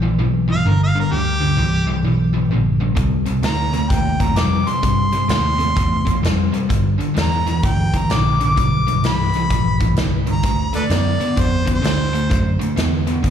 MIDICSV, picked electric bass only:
0, 0, Header, 1, 3, 480
1, 0, Start_track
1, 0, Tempo, 466200
1, 1150, Time_signature, 4, 2, 24, 8
1, 13695, End_track
2, 0, Start_track
2, 0, Title_t, "Picked electric bass"
2, 0, Program_c, 0, 34
2, 0, Note_on_c, 0, 34, 82
2, 188, Note_off_c, 0, 34, 0
2, 206, Note_on_c, 0, 35, 77
2, 664, Note_off_c, 0, 35, 0
2, 672, Note_on_c, 0, 31, 92
2, 1135, Note_off_c, 0, 31, 0
2, 1155, Note_on_c, 0, 38, 77
2, 1612, Note_off_c, 0, 38, 0
2, 1618, Note_on_c, 0, 36, 86
2, 2086, Note_off_c, 0, 36, 0
2, 2091, Note_on_c, 0, 35, 75
2, 2561, Note_off_c, 0, 35, 0
2, 2568, Note_on_c, 0, 34, 83
2, 3039, Note_off_c, 0, 34, 0
2, 3057, Note_on_c, 0, 36, 77
2, 3522, Note_off_c, 0, 36, 0
2, 3527, Note_on_c, 0, 38, 81
2, 3997, Note_off_c, 0, 38, 0
2, 4022, Note_on_c, 0, 39, 78
2, 4473, Note_off_c, 0, 39, 0
2, 4479, Note_on_c, 0, 41, 86
2, 4773, Note_off_c, 0, 41, 0
2, 4973, Note_on_c, 0, 43, 80
2, 5438, Note_off_c, 0, 43, 0
2, 5451, Note_on_c, 0, 39, 84
2, 5917, Note_off_c, 0, 39, 0
2, 5932, Note_on_c, 0, 40, 82
2, 6397, Note_off_c, 0, 40, 0
2, 6413, Note_on_c, 0, 41, 88
2, 6699, Note_off_c, 0, 41, 0
2, 6899, Note_on_c, 0, 43, 80
2, 7182, Note_off_c, 0, 43, 0
2, 7381, Note_on_c, 0, 40, 85
2, 7843, Note_off_c, 0, 40, 0
2, 7862, Note_on_c, 0, 38, 81
2, 8324, Note_off_c, 0, 38, 0
2, 8338, Note_on_c, 0, 34, 90
2, 8803, Note_off_c, 0, 34, 0
2, 8828, Note_on_c, 0, 35, 78
2, 9289, Note_off_c, 0, 35, 0
2, 9296, Note_on_c, 0, 36, 82
2, 9763, Note_off_c, 0, 36, 0
2, 9785, Note_on_c, 0, 34, 76
2, 10236, Note_off_c, 0, 34, 0
2, 10242, Note_on_c, 0, 36, 89
2, 10718, Note_off_c, 0, 36, 0
2, 10745, Note_on_c, 0, 38, 79
2, 11031, Note_off_c, 0, 38, 0
2, 11221, Note_on_c, 0, 42, 81
2, 11510, Note_off_c, 0, 42, 0
2, 11710, Note_on_c, 0, 41, 77
2, 12175, Note_off_c, 0, 41, 0
2, 12185, Note_on_c, 0, 38, 87
2, 12653, Note_off_c, 0, 38, 0
2, 12680, Note_on_c, 0, 42, 79
2, 12962, Note_off_c, 0, 42, 0
2, 13153, Note_on_c, 0, 40, 82
2, 13619, Note_off_c, 0, 40, 0
2, 13633, Note_on_c, 0, 38, 78
2, 13695, Note_off_c, 0, 38, 0
2, 13695, End_track
3, 0, Start_track
3, 0, Title_t, "Muted picked electric bass strokes"
3, 4810, Note_on_c, 9, 29, 35
3, 4913, Note_off_c, 9, 29, 0
3, 6729, Note_on_c, 9, 29, 36
3, 6832, Note_off_c, 9, 29, 0
3, 7209, Note_on_c, 9, 29, 38
3, 7312, Note_off_c, 9, 29, 0
3, 11050, Note_on_c, 9, 29, 39
3, 11153, Note_off_c, 9, 29, 0
3, 11524, Note_on_c, 9, 29, 38
3, 11627, Note_off_c, 9, 29, 0
3, 12978, Note_on_c, 9, 29, 38
3, 13081, Note_off_c, 9, 29, 0
3, 13695, End_track
0, 0, End_of_file